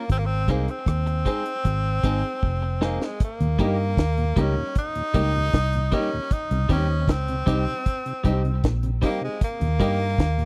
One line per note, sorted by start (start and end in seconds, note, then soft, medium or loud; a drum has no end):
0.00 0.11 A#3 medium
0.10 0.46 G#1 loud
0.10 0.20 C4 loud
0.10 kick loud
0.10 closed hi-hat medium
0.19 0.27 A#3 medium
0.26 0.52 C4 loud
0.48 0.67 C2 medium
0.48 0.65 G#3 medium
0.48 0.72 A#3 medium
0.48 0.68 C4 medium
0.48 0.65 C4 medium
0.48 0.69 D#4 medium
0.48 0.66 D#4 loud
0.48 0.69 G#4 medium
0.48 0.66 G#4 loud
0.48 0.69 C5 medium
0.48 kick loud
0.48 closed hi-hat medium
0.68 2.83 C4 loud
0.68 closed hi-hat soft
0.86 1.23 D#2 medium
0.86 kick medium
0.86 cross-stick loud
0.86 closed hi-hat medium
1.07 muted clean electric guitar stroke soft
1.07 closed hi-hat soft
1.25 1.43 G#3 medium
1.25 1.43 C4 medium
1.25 1.46 C4 medium
1.25 1.43 D#4 medium
1.25 1.46 D#4 medium
1.25 1.47 G#4 medium
1.25 1.43 G#4 medium
1.25 1.47 C5 loud
1.25 kick medium
1.25 closed hi-hat medium
1.46 closed hi-hat medium
1.65 2.01 G#1 loud
1.65 kick medium
1.65 closed hi-hat medium
2.03 2.22 G#1 medium
2.03 2.20 G#3 medium
2.03 2.24 C4 medium
2.03 2.21 C4 medium
2.03 2.24 D#4 medium
2.03 2.21 D#4 medium
2.03 2.24 G#4 medium
2.03 2.22 G#4 medium
2.03 2.24 C5 medium
2.03 kick loud
2.03 cross-stick medium
2.03 closed hi-hat medium
2.43 2.97 F1 medium
2.43 kick loud
2.62 muted clean electric guitar stroke soft
2.81 2.98 G#3 medium
2.81 3.07 A#3 medium
2.81 3.01 C4 medium
2.81 2.98 C4 medium
2.81 3.01 D#4 medium
2.81 2.99 D#4 medium
2.81 3.02 G#4 medium
2.81 2.99 G#4 medium
2.81 3.02 C5 loud
2.81 snare medium
3.02 3.22 G#3 medium
3.02 snare medium
3.20 4.42 A#3 loud
3.20 kick loud
3.20 closed hi-hat loud
3.40 3.58 D#2 medium
3.40 3.48 D#2 medium
3.40 3.48 A#2 medium
3.40 closed hi-hat medium
3.59 3.95 G2 medium
3.59 3.76 G3 medium
3.59 3.67 G3 medium
3.59 3.76 A#3 loud
3.59 3.67 A#3 medium
3.59 3.79 D#4 medium
3.59 3.76 D#4 medium
3.59 3.67 D#4 medium
3.59 3.79 G4 medium
3.59 3.77 G4 loud
3.59 3.79 A#4 medium
3.59 3.80 D#5 loud
3.59 kick loud
3.59 closed hi-hat medium
3.97 4.34 D#2 medium
3.97 kick loud
3.97 snare loud
3.97 closed hi-hat medium
4.17 4.25 D#2 medium
4.17 4.25 A#2 medium
4.17 closed hi-hat soft
4.36 4.55 C#2 medium
4.36 4.53 G3 medium
4.36 4.44 G3 medium
4.36 4.44 A#3 medium
4.36 4.54 A#3 medium
4.36 4.57 D#4 loud
4.36 4.44 D#4 medium
4.36 4.54 D#4 medium
4.36 4.57 G4 medium
4.36 4.54 G4 loud
4.36 4.57 A#4 medium
4.36 4.57 D#5 loud
4.36 kick loud
4.36 closed hi-hat medium
4.41 4.78 C#4 medium
4.57 4.64 D#2 medium
4.57 4.64 A#2 medium
4.75 5.96 D#4 loud
4.75 kick loud
4.75 closed hi-hat medium
4.95 5.03 D#2 medium
4.95 5.03 A#2 medium
4.95 closed hi-hat medium
5.14 5.51 C#2 medium
5.14 5.31 G3 medium
5.14 5.22 G3 medium
5.14 5.31 A#3 medium
5.14 5.22 A#3 medium
5.14 5.34 D#4 loud
5.14 5.32 D#4 medium
5.14 5.22 D#4 medium
5.14 5.35 G4 medium
5.14 5.32 G4 medium
5.14 5.35 A#4 medium
5.14 5.35 D#5 loud
5.14 kick loud
5.14 closed hi-hat medium
5.35 5.42 D#2 medium
5.35 5.42 A#2 medium
5.53 5.90 C2 medium
5.53 kick loud
5.53 snare loud
5.53 closed hi-hat medium
5.73 5.81 D#2 medium
5.73 5.81 A#2 medium
5.73 closed hi-hat medium
5.92 6.09 G3 medium
5.92 6.00 G3 medium
5.92 6.09 A#3 loud
5.92 6.00 A#3 medium
5.92 6.34 C#4 medium
5.92 6.12 D#4 loud
5.92 6.09 D#4 loud
5.92 6.00 D#4 medium
5.92 6.12 G4 medium
5.92 6.10 G4 medium
5.92 6.12 A#4 medium
5.92 6.13 D#5 loud
5.92 kick medium
5.92 closed hi-hat medium
6.13 6.20 D#2 medium
6.13 6.20 A#2 medium
6.31 6.71 D#4 loud
6.31 kick loud
6.31 closed hi-hat medium
6.51 6.69 C2 medium
6.51 6.58 C3 medium
6.51 closed hi-hat medium
6.69 7.08 D#2 medium
6.69 6.86 G3 medium
6.69 6.77 G3 medium
6.69 6.87 C4 medium
6.69 6.78 C4 medium
6.69 7.13 C#4 medium
6.69 6.89 D#4 loud
6.69 6.87 D#4 medium
6.69 6.78 D#4 medium
6.69 6.90 G4 medium
6.69 6.87 G4 loud
6.69 6.90 C5 medium
6.69 6.90 D#5 loud
6.69 kick loud
6.69 closed hi-hat medium
7.08 7.44 C#2 medium
7.08 8.77 C4 loud
7.08 kick loud
7.08 snare loud
7.08 closed hi-hat medium
7.28 7.36 C3 medium
7.28 closed hi-hat soft
7.46 7.66 C2 medium
7.46 7.64 G3 medium
7.46 7.55 G3 medium
7.46 7.64 C4 loud
7.46 7.55 C4 medium
7.46 7.67 D#4 loud
7.46 7.64 D#4 medium
7.46 7.55 D#4 medium
7.46 7.67 G4 medium
7.46 7.64 G4 loud
7.46 7.67 C5 medium
7.46 7.68 D#5 loud
7.46 kick medium
7.46 closed hi-hat medium
7.67 7.74 C3 medium
7.67 closed hi-hat soft
7.86 kick loud
7.86 closed hi-hat medium
8.06 8.13 C3 medium
8.06 closed hi-hat medium
8.24 8.61 C2 loud
8.24 8.41 G3 medium
8.24 8.32 G3 medium
8.24 8.32 C4 medium
8.24 8.42 C4 medium
8.24 8.45 D#4 medium
8.24 8.32 D#4 medium
8.24 8.42 D#4 loud
8.24 8.45 G4 medium
8.24 8.42 G4 loud
8.24 8.45 C5 medium
8.24 8.45 D#5 medium
8.24 kick loud
8.24 closed hi-hat medium
8.44 8.52 C3 medium
8.44 closed hi-hat soft
8.64 9.00 A#1 medium
8.64 kick loud
8.64 snare loud
8.64 closed hi-hat medium
8.83 8.90 C3 medium
8.83 closed hi-hat medium
9.01 9.19 G3 medium
9.01 9.10 G3 medium
9.01 9.22 A#3 medium
9.01 9.10 C4 medium
9.01 9.19 C4 medium
9.01 9.10 D#4 medium
9.01 9.23 D#4 medium
9.01 9.20 D#4 medium
9.01 9.23 G4 medium
9.01 9.20 G4 medium
9.01 9.23 C5 medium
9.01 9.23 D#5 loud
9.01 kick medium
9.01 closed hi-hat medium
9.21 9.29 C3 medium
9.21 9.41 G#3 medium
9.21 muted clean electric guitar stroke soft
9.41 10.45 A#3 loud
9.41 kick loud
9.41 closed hi-hat medium
9.60 9.68 D#2 medium
9.60 9.79 D#2 loud
9.60 9.68 A#2 medium
9.60 closed hi-hat medium
9.79 10.16 G2 loud
9.79 9.87 G3 medium
9.79 9.97 G3 medium
9.79 9.87 A#3 medium
9.79 9.97 A#3 loud
9.79 9.87 D#4 medium
9.79 10.00 D#4 loud
9.79 9.97 D#4 medium
9.79 10.00 G4 loud
9.79 9.98 G4 loud
9.79 10.01 A#4 medium
9.79 10.01 D#5 loud
9.79 kick loud
9.79 closed hi-hat medium
10.18 10.45 D#2 loud
10.18 kick loud
10.18 snare loud
10.18 closed hi-hat medium
10.38 10.45 D#2 medium
10.38 10.45 A#2 medium
10.38 closed hi-hat soft